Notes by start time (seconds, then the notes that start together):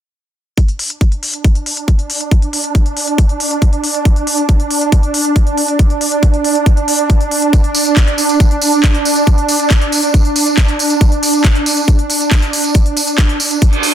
0.58 D4, kick, closed hi-hat
0.68 closed hi-hat
0.79 open hi-hat
0.90 closed hi-hat
1.01 kick, closed hi-hat
1.12 closed hi-hat
1.23 open hi-hat
1.34 closed hi-hat
1.44 kick, closed hi-hat
1.55 closed hi-hat
1.66 open hi-hat
1.77 closed hi-hat
1.88 kick, closed hi-hat
1.99 closed hi-hat
2.10 open hi-hat
2.21 closed hi-hat
2.31 kick, closed hi-hat
2.42 closed hi-hat
2.53 open hi-hat
2.64 closed hi-hat
2.75 kick, closed hi-hat
2.86 closed hi-hat
2.97 open hi-hat
3.08 closed hi-hat
3.18 kick, closed hi-hat
3.29 closed hi-hat
3.40 open hi-hat
3.51 closed hi-hat
3.62 kick, closed hi-hat
3.73 closed hi-hat
3.84 open hi-hat
3.94 closed hi-hat
4.05 kick, closed hi-hat
4.16 closed hi-hat
4.27 open hi-hat
4.38 closed hi-hat
4.49 kick, closed hi-hat
4.60 closed hi-hat
4.71 open hi-hat
4.81 closed hi-hat
4.92 kick, closed hi-hat
5.03 closed hi-hat
5.14 open hi-hat
5.25 closed hi-hat
5.36 kick, closed hi-hat
5.47 closed hi-hat
5.58 open hi-hat
5.68 closed hi-hat
5.79 kick, closed hi-hat
5.90 closed hi-hat
6.01 open hi-hat
6.12 closed hi-hat
6.23 kick, closed hi-hat
6.34 closed hi-hat
6.44 open hi-hat
6.55 closed hi-hat
6.66 kick, closed hi-hat
6.77 closed hi-hat
6.88 open hi-hat
6.99 closed hi-hat
7.10 kick, closed hi-hat
7.21 closed hi-hat
7.31 open hi-hat
7.42 closed hi-hat
7.53 kick, closed hi-hat, tambourine
7.64 closed hi-hat
7.75 open hi-hat, tambourine
7.85 closed hi-hat, tambourine
7.97 kick, clap, closed hi-hat, tambourine
8.08 closed hi-hat
8.18 open hi-hat, tambourine
8.29 closed hi-hat, tambourine
8.40 kick, closed hi-hat, tambourine
8.51 closed hi-hat
8.61 open hi-hat, tambourine
8.73 closed hi-hat, tambourine
8.84 kick, clap, closed hi-hat, tambourine
8.94 closed hi-hat
9.05 open hi-hat, tambourine
9.15 closed hi-hat, tambourine
9.27 kick, closed hi-hat, tambourine
9.38 closed hi-hat
9.48 open hi-hat, tambourine
9.60 closed hi-hat, tambourine
9.70 kick, clap, closed hi-hat, tambourine
9.81 closed hi-hat
9.92 open hi-hat, tambourine
10.03 closed hi-hat, tambourine
10.14 kick, closed hi-hat, tambourine
10.25 closed hi-hat
10.36 open hi-hat, tambourine
10.47 closed hi-hat, tambourine
10.58 kick, clap, closed hi-hat
10.68 closed hi-hat
10.79 open hi-hat, tambourine
10.90 closed hi-hat, tambourine
11.01 kick, closed hi-hat, tambourine
11.12 closed hi-hat
11.23 open hi-hat, tambourine
11.34 closed hi-hat, tambourine
11.44 kick, clap, closed hi-hat, tambourine
11.55 closed hi-hat
11.66 open hi-hat, tambourine
11.77 closed hi-hat, tambourine
11.88 kick, closed hi-hat
11.99 closed hi-hat
12.10 open hi-hat, tambourine
12.21 closed hi-hat, tambourine
12.31 kick, clap, closed hi-hat, tambourine
12.42 closed hi-hat
12.53 open hi-hat, tambourine
12.64 closed hi-hat, tambourine
12.74 kick, closed hi-hat, tambourine
12.86 closed hi-hat
12.97 open hi-hat, tambourine
13.07 closed hi-hat, tambourine
13.18 kick, clap, closed hi-hat
13.29 closed hi-hat
13.40 open hi-hat, tambourine
13.51 closed hi-hat, tambourine
13.62 kick, closed hi-hat, reverse cymbal
13.73 closed hi-hat
13.83 open hi-hat, tambourine